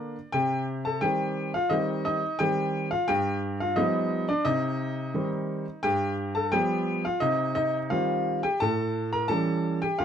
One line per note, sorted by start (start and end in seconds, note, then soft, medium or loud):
0.00 0.15 D3 soft
0.00 0.15 A#3 soft
0.00 0.15 D4 soft
0.00 0.33 D5 medium
0.32 1.01 C3 medium
0.32 0.82 G4 medium
0.32 0.64 G5 medium
0.85 1.02 A4 medium
0.85 1.03 A5 medium
1.01 1.52 D#3 soft
1.01 1.52 G3 soft
1.01 1.53 C4 soft
1.01 1.51 G4 medium
1.01 1.50 G5 medium
1.54 1.71 F4 medium
1.54 1.72 F5 medium
1.70 2.20 D#3 soft
1.70 2.21 G3 soft
1.70 2.21 C4 soft
1.70 2.03 D#4 medium
1.70 2.03 D#5 medium
2.05 2.38 D#4 medium
2.05 2.40 D#5 medium
2.39 2.90 D#3 soft
2.39 2.90 G3 soft
2.39 2.90 C4 soft
2.39 2.88 G4 medium
2.39 2.87 G5 medium
2.91 3.08 F4 medium
2.91 3.09 F5 medium
3.08 3.76 G2 medium
3.08 3.57 G4 medium
3.08 3.39 G5 medium
3.60 3.77 F4 medium
3.60 3.78 F5 medium
3.76 4.26 F3 soft
3.76 4.27 G3 soft
3.76 4.27 B3 soft
3.76 4.25 D#4 medium
3.76 4.29 D#5 medium
4.29 4.46 D4 medium
4.29 4.46 D5 medium
4.45 5.12 C3 medium
4.45 5.79 D#4 medium
4.45 5.27 D#5 medium
5.14 5.64 D#3 soft
5.14 5.64 G3 soft
5.14 5.65 C4 soft
5.83 6.50 G2 medium
5.83 6.32 G4 medium
5.83 6.14 G5 medium
6.35 6.52 A4 medium
6.35 6.52 A5 medium
6.52 7.03 F3 soft
6.52 7.03 G3 soft
6.52 7.03 B3 soft
6.52 7.01 G4 medium
6.52 7.04 G5 medium
7.05 7.21 F4 medium
7.05 7.22 F5 medium
7.20 7.89 C3 medium
7.20 7.54 D#4 medium
7.20 7.53 D#5 medium
7.55 7.88 D#4 medium
7.55 7.76 D#5 medium
7.90 8.41 D#3 soft
7.90 8.41 G3 soft
7.90 8.41 C4 soft
7.90 8.39 F4 medium
7.90 8.39 F5 medium
8.43 8.60 G4 medium
8.43 8.61 G5 medium
8.60 9.28 A2 medium
8.60 9.10 A4 medium
8.60 9.09 A5 loud
9.13 9.29 A#4 medium
9.13 9.30 A#5 medium
9.28 9.80 E3 soft
9.28 9.80 G3 soft
9.28 9.81 C#4 soft
9.28 9.78 A4 medium
9.28 9.81 A5 medium
9.82 9.99 G4 medium
9.82 9.99 G5 medium
9.99 10.05 D2 medium
9.99 10.05 F4 medium
9.99 10.05 F5 medium